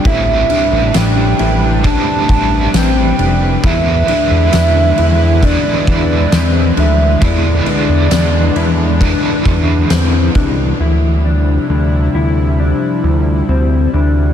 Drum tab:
RD |xxxxxxxx|xxxxxxxx|xxxxxxxx|--------|
TB |--x---x-|--x---x-|--x---x-|--------|
SD |--o---o-|--o---o-|--o---o-|--------|
BD |o---oo--|o---oo--|o---oo-o|--------|